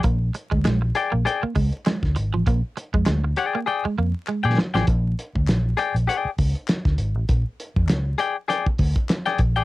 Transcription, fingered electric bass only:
X:1
M:4/4
L:1/16
Q:"Swing 16ths" 1/4=99
K:Bbmix
V:1 name="Fingered electric bass" clef=bass
B,,,2 z D,, B,,,2 z B,,, z2 _D,, z2 =D,, A,,, =A,,, | B,,, z2 F,, D,,2 z4 F,, z2 B,, z =A,,, | B,,,2 z D,, B,,,2 z B,,, z2 _D,, z2 =D,, A,,, =A,,, | B,,, z2 F,, _D,,2 z4 =D,, z3 B,,, =A,,, |]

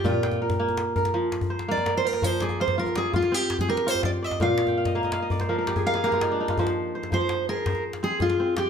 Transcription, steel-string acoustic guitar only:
X:1
M:12/8
L:1/16
Q:3/8=110
K:Fdor
V:1 name="Steel-string acoustic guitar"
F4 z12 z2 d3 c B2 | c2 A2 c2 B2 A2 F2 G3 A B2 c2 d2 e2 | f8- f2 z6 f2 B6 | z6 c4 B4 z2 A2 F4 G2 |]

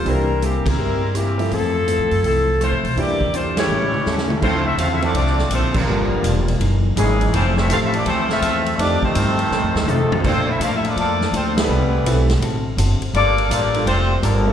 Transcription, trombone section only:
X:1
M:4/4
L:1/8
Q:"Swing" 1/4=165
K:F
V:1 name="Trombone section"
z8 | z8 | z3 [E,G,_D]3 [^C,A,E]2 | [K:Dm] [F,A,C] [A,CE] (3[A,CF] [A,CE] [F,A,D] [F,A,D]2 [F,A,C] [D,F,B,]- |
[D,F,B,]3 z3 [^C,E,^G,]2 | [E,A,C] [A,CE] (3[A,CF] [A,CE] D [E,A,C] [A,CF]3 | D [_E,A,C]4- [E,A,C] [C,E,A,]2 | C E (3[A,DF] E [F,A,D] [F,DA]2 C [E,G,=B,]- |
[E,G,=B,]3 z4 z | [F,B,D]2 [F,B,D]2 C2 [D,F,B,]2 |]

